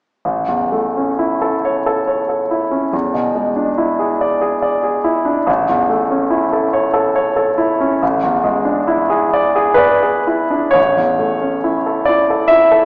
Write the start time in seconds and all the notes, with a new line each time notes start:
0.25 A1
0.48 E2
0.72 A3
0.97 C#4
1.19 E4
1.42 A4
1.65 C#5
1.86 A4
2.07 C#5
2.29 A4
2.51 E4
2.71 C#4
2.93 E2
3.14 B2
3.35 G#3
3.56 D4
3.78 E4
3.99 G#4
4.21 D5
4.41 G#4
4.62 D5
4.83 G#4
5.04 E4
5.25 D4
5.47 A1
5.69 E2
5.90 A3
6.11 C#4
6.30 E4
6.53 A4
6.73 C#5
6.93 A4
7.16 C#5
7.36 A4
7.58 E4
7.80 C#4
8.02 A1
8.23 E2
8.44 G#3
8.65 D4
8.87 E4
9.10 G#4
9.34 D5
9.55 G#4
9.74 B4 D5
10.03 G#4
10.27 E4
10.51 D4
10.71 A1 C#5
10.97 E2
11.19 A3
11.41 C#4
11.64 E4
11.86 A4
12.05 E4 D5
12.30 A4
12.48 E4 E5
12.72 A4